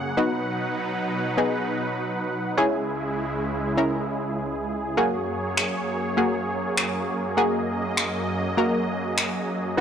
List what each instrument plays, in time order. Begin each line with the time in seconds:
Already playing: supersaw synth F#2 C#3 A#3 G#4 F#5
0.17 supersaw synth B2 F#3 D#4 B4, synth stab B3 D#4 F#4
1.37 synth stab B3 D#4 G#4
2.57 supersaw synth C#2 C#3 G#3 E4 G#4, synth stab C#4 E4 G#4
3.77 synth stab C#4 E4 A#4
4.97 supersaw synth F#2 F#3 A#3 C#5, synth stab A#3 F#4 G#4
5.57 finger snap
6.17 synth stab A#3 F#4 G#4
6.77 finger snap
7.37 synth stab A#3 F#4 G#4, supersaw synth D#5
7.97 finger snap
8.57 synth stab A#3 F#4 A#4
9.18 finger snap
9.77 supersaw synth B2 D#4 B4 F#5, synth stab B3